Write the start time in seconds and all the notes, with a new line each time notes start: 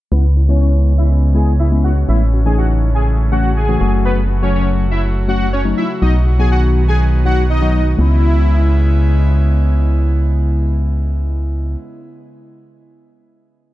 0.12 C#2 C#3 G#3 B3 C#4 E4 B4
0.36 C#4 E4
0.49 G#3 B3 C#4 E4 C#5
0.61 C#4 C#5
0.98 E4 E5
1.35 G#3 B3 C#4 E4 G#4 G#5
1.59 E4 E5
1.71 G#3 B3 C#4 E4
1.84 F#4 F#5
2.08 A1 E3 A3 C#4 E4 E5
2.33 C#4 F#4
2.45 E3 A3 C#4 D#4 G#4 G#5
2.58 F#4 F#5
2.95 G#4 G#5
3.32 E3 A3 C#4 F#4 F#5
3.56 G#4 G#5
3.68 E3 A3 C#4 F#4
3.81 F#1 F#3 A3 C#4 F#4
4.05 B3 B4
4.30 C#4 F#4
4.42 F#3 A3 C#4 F#4 C#5
4.55 C#4 C#5
4.91 E4 E5
5.28 F#3 A3 C#4 F#4 F#5
5.53 C#4 C#5
5.65 F#3 A3 C#4 D#4
5.77 E4 E5
6.02 B1 D#3 F#3 B3 D#4 F#4 D#5
6.26 D#4 F#4
6.39 F#3 B3 D#4 F#4 G#4 G#5
6.51 F#4 F#5
6.88 G#4 G#5
7.25 F#3 B3 D#4 F#4 F#5
7.50 D#4 D#5
7.62 F#3 B3 D#4 F#4
7.97 C#2 C#3 G#3 B3 C#4 E4
8.01 E4